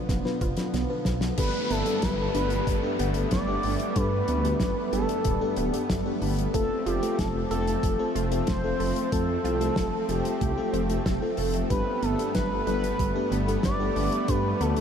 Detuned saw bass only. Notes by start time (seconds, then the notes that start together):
0.09 F1
0.41 F1
0.74 B1
1.06 B1
1.38 G1
1.71 G1
2.03 G1
2.35 G1
2.67 G1
3.00 G1
3.32 G1
3.64 G1
3.96 G2
4.29 D2
4.61 G1
4.93 G1
5.25 D1
5.57 D1
5.90 G1
6.22 G1
6.54 F1
6.86 F1
7.19 F1
7.51 F1
7.83 F1
8.16 F1
8.48 F1
8.80 F1
9.12 F2
9.45 C2
9.77 F1
10.09 F1
10.41 C2
10.74 F1
11.06 F1
11.38 F1
11.70 G1
12.03 G1
12.35 G1
12.67 G1
12.99 G1
13.32 G1
13.64 G1
13.96 G1
14.28 G2
14.61 D2